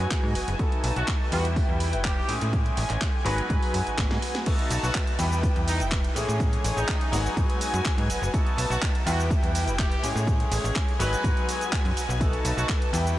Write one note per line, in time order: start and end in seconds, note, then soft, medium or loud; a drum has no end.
0.00 0.54 F#3 medium
0.00 0.55 G#3 medium
0.00 0.55 B3 medium
0.00 0.55 D#4 medium
0.00 0.55 F#4 loud
0.00 0.58 F#4 medium
0.00 1.30 B4 medium
0.00 0.58 G#5 medium
0.11 kick loud
0.11 clap loud
0.11 closed hi-hat medium
0.23 0.34 G#2 loud
0.35 0.45 F#1 soft
0.35 open hi-hat loud
0.48 0.55 F#1 medium
0.48 closed hi-hat medium
0.59 1.27 A3 medium
0.59 1.27 B3 medium
0.59 1.31 D#4 medium
0.59 1.27 D#4 medium
0.59 1.28 F#4 medium
0.59 1.28 A4 medium
0.59 1.31 A5 medium
0.59 kick loud
0.59 closed hi-hat medium
0.72 closed hi-hat soft
0.84 0.91 B1 loud
0.84 open hi-hat loud
0.96 1.03 B1 loud
0.96 1.09 F#4 medium
0.96 closed hi-hat medium
1.08 kick loud
1.08 clap loud
1.08 closed hi-hat medium
1.31 1.61 E2 loud
1.31 2.24 G3 medium
1.31 2.24 B3 medium
1.31 2.28 E4 medium
1.31 2.24 E4 medium
1.31 1.46 F#4 medium
1.31 2.24 G4 medium
1.31 2.28 B4 medium
1.31 2.25 B4 medium
1.31 2.28 G5 medium
1.31 open hi-hat loud
1.45 closed hi-hat medium
1.56 kick loud
1.56 open hi-hat medium
1.69 1.95 E2 medium
1.80 open hi-hat loud
1.93 2.22 E1 loud
1.93 closed hi-hat medium
2.04 2.34 G4 medium
2.04 kick loud
2.04 clap loud
2.04 closed hi-hat medium
2.28 2.39 A2 soft
2.28 3.20 G#3 medium
2.28 3.21 A3 medium
2.28 3.24 C#4 medium
2.28 3.21 C#4 medium
2.28 3.21 E4 medium
2.28 3.21 G#4 medium
2.28 4.44 G#5 medium
2.28 open hi-hat loud
2.41 2.70 A2 medium
2.41 closed hi-hat medium
2.53 kick loud
2.53 closed hi-hat medium
2.66 closed hi-hat soft
2.77 2.85 A1 loud
2.77 open hi-hat loud
2.90 2.97 A1 loud
2.90 clap soft
2.90 closed hi-hat medium
3.01 kick loud
3.01 clap loud
3.01 closed hi-hat medium
3.25 3.41 G#1 loud
3.25 4.41 F#3 medium
3.25 4.42 G#3 medium
3.25 4.42 B3 medium
3.25 4.42 D#4 medium
3.25 4.45 F#4 medium
3.25 4.42 F#4 loud
3.25 3.74 B4 loud
3.25 4.45 B4 medium
3.25 open hi-hat loud
3.38 closed hi-hat medium
3.50 3.58 G#2 medium
3.50 kick loud
3.50 closed hi-hat medium
3.62 open hi-hat medium
3.74 3.82 F#2 medium
3.74 open hi-hat loud
3.87 3.96 G#1 soft
3.87 closed hi-hat medium
3.98 4.06 G#1 loud
3.98 kick loud
3.98 snare medium
3.98 clap loud
3.98 closed hi-hat medium
4.10 4.18 G#2 loud
4.10 snare medium
4.22 open hi-hat loud
4.35 snare medium
4.35 closed hi-hat medium
4.46 5.14 A3 medium
4.46 5.14 B3 medium
4.46 5.18 D#4 medium
4.46 5.15 D#4 medium
4.46 5.15 F#4 medium
4.46 5.15 A4 medium
4.46 5.18 B4 medium
4.46 5.18 A5 medium
4.46 kick loud
4.46 closed hi-hat medium
4.46 crash loud
4.46 cabasa soft
4.59 closed hi-hat medium
4.70 4.78 B1 loud
4.70 open hi-hat loud
4.70 cabasa medium
4.83 4.91 B1 loud
4.83 4.96 F#4 medium
4.83 cabasa soft
4.95 kick loud
4.95 clap loud
4.95 closed hi-hat medium
4.95 cabasa soft
5.07 closed hi-hat medium
5.18 5.48 E2 loud
5.18 6.11 G3 medium
5.18 6.11 B3 medium
5.18 6.11 E4 medium
5.18 6.15 E4 medium
5.18 6.11 G4 medium
5.18 6.15 B4 medium
5.18 6.11 B4 medium
5.18 6.15 G5 medium
5.18 open hi-hat loud
5.18 cabasa medium
5.32 cabasa soft
5.43 kick loud
5.43 closed hi-hat medium
5.43 cabasa soft
5.56 5.81 E2 medium
5.56 closed hi-hat medium
5.67 5.81 D#4 medium
5.67 open hi-hat loud
5.67 cabasa medium
5.80 6.09 E1 loud
5.80 closed hi-hat soft
5.80 cabasa soft
5.92 kick loud
5.92 clap loud
5.92 closed hi-hat medium
5.92 cabasa soft
6.04 closed hi-hat medium
6.15 6.26 A2 soft
6.15 7.08 E3 medium
6.15 7.08 G#3 medium
6.15 7.08 A3 medium
6.15 7.08 C#4 medium
6.15 7.12 G#4 medium
6.15 7.08 G#4 medium
6.15 7.12 C#5 medium
6.15 open hi-hat loud
6.15 cabasa medium
6.28 6.57 A2 medium
6.28 cabasa soft
6.40 kick loud
6.40 closed hi-hat medium
6.40 cabasa soft
6.53 closed hi-hat medium
6.64 6.72 A1 loud
6.64 open hi-hat loud
6.64 cabasa medium
6.76 6.84 A1 loud
6.76 7.17 D#4 medium
6.76 cabasa soft
6.88 kick loud
6.88 clap loud
6.88 closed hi-hat medium
6.88 cabasa soft
7.01 closed hi-hat medium
7.12 7.28 G#1 loud
7.12 8.29 F#3 loud
7.12 8.29 G#3 medium
7.12 8.29 B3 medium
7.12 8.29 D#4 medium
7.12 8.33 F#4 medium
7.12 8.30 F#4 loud
7.12 9.05 B4 medium
7.12 8.32 G#5 medium
7.12 open hi-hat loud
7.12 cabasa medium
7.26 cabasa soft
7.37 7.45 G#2 loud
7.37 kick loud
7.37 closed hi-hat medium
7.37 cabasa soft
7.50 closed hi-hat medium
7.61 open hi-hat loud
7.61 cabasa medium
7.73 7.81 F#2 loud
7.73 closed hi-hat soft
7.73 cabasa soft
7.85 kick loud
7.85 clap loud
7.85 closed hi-hat medium
7.85 cabasa soft
7.98 8.09 G#2 loud
7.98 closed hi-hat medium
8.09 8.19 F#1 soft
8.09 open hi-hat loud
8.09 cabasa medium
8.22 8.29 F#1 loud
8.22 cabasa soft
8.33 9.01 A3 medium
8.33 9.01 B3 medium
8.33 9.02 D#4 medium
8.33 9.06 D#4 medium
8.33 9.02 F#4 medium
8.33 9.02 A4 medium
8.33 9.06 A5 medium
8.33 kick loud
8.33 closed hi-hat medium
8.33 cabasa soft
8.46 closed hi-hat medium
8.58 8.66 B1 loud
8.58 open hi-hat loud
8.58 cabasa medium
8.70 8.78 B1 loud
8.70 8.83 F#4 loud
8.70 cabasa soft
8.82 kick loud
8.82 clap loud
8.82 closed hi-hat medium
8.82 cabasa soft
8.95 closed hi-hat medium
9.06 9.35 E2 loud
9.06 9.98 G3 medium
9.06 9.98 B3 medium
9.06 10.02 E4 medium
9.06 9.98 E4 medium
9.06 9.20 F#4 medium
9.06 9.99 G4 medium
9.06 10.02 B4 medium
9.06 9.99 B4 medium
9.06 10.02 G5 medium
9.06 open hi-hat loud
9.06 cabasa medium
9.20 cabasa soft
9.31 kick loud
9.31 closed hi-hat medium
9.31 cabasa soft
9.42 9.68 E2 medium
9.42 closed hi-hat medium
9.55 open hi-hat loud
9.55 cabasa medium
9.67 9.96 E1 loud
9.67 closed hi-hat soft
9.67 cabasa soft
9.79 10.08 G4 medium
9.79 kick loud
9.79 clap loud
9.79 closed hi-hat medium
9.79 cabasa soft
9.92 closed hi-hat medium
10.03 10.13 A2 soft
10.03 10.95 G#3 medium
10.03 10.95 A3 medium
10.03 10.95 C#4 medium
10.03 10.96 E4 medium
10.03 10.99 G#4 medium
10.03 10.96 G#4 medium
10.03 10.99 C#5 medium
10.03 open hi-hat loud
10.03 cabasa medium
10.15 10.44 A2 medium
10.15 cabasa soft
10.27 kick loud
10.27 closed hi-hat medium
10.27 cabasa soft
10.40 closed hi-hat soft
10.51 10.59 A1 loud
10.51 open hi-hat loud
10.51 cabasa medium
10.64 10.71 A1 loud
10.64 cabasa soft
10.76 kick loud
10.76 clap loud
10.76 closed hi-hat medium
10.76 cabasa soft
10.88 closed hi-hat medium
10.99 11.15 G#1 loud
10.99 12.16 F#3 medium
10.99 12.16 G#3 medium
10.99 12.16 B3 medium
10.99 12.17 D#4 medium
10.99 12.20 F#4 medium
10.99 12.17 F#4 loud
10.99 11.48 B4 loud
10.99 13.19 B4 medium
10.99 12.20 G#5 medium
10.99 open hi-hat loud
10.99 cabasa medium
11.13 closed hi-hat soft
11.13 cabasa soft
11.24 11.32 G#2 medium
11.24 kick loud
11.24 closed hi-hat medium
11.24 cabasa soft
11.37 closed hi-hat medium
11.49 open hi-hat loud
11.49 cabasa medium
11.61 closed hi-hat soft
11.61 cabasa soft
11.72 kick loud
11.72 clap loud
11.72 closed hi-hat medium
11.72 cabasa soft
11.85 11.92 F#2 loud
11.85 closed hi-hat medium
11.96 12.07 B1 soft
11.96 open hi-hat loud
11.96 cabasa medium
12.09 12.38 B1 loud
12.09 cabasa soft
12.20 12.88 A3 medium
12.20 12.88 B3 medium
12.20 12.92 D#4 medium
12.20 12.88 D#4 medium
12.20 12.89 F#4 medium
12.20 12.89 A4 medium
12.20 12.92 A5 medium
12.20 kick loud
12.20 closed hi-hat medium
12.20 cabasa soft
12.33 closed hi-hat soft
12.45 12.53 B1 loud
12.45 open hi-hat loud
12.45 cabasa medium
12.57 12.65 B1 loud
12.57 12.70 F#4 medium
12.57 cabasa soft
12.69 kick loud
12.69 clap loud
12.69 closed hi-hat medium
12.69 cabasa soft
12.82 closed hi-hat medium
12.93 13.19 E2 loud
12.93 13.19 G3 medium
12.93 13.19 B3 medium
12.93 13.19 E4 medium
12.93 13.19 G4 medium
12.93 13.19 B4 medium
12.93 13.19 G5 medium
12.93 open hi-hat loud
12.93 cabasa medium
13.07 cabasa soft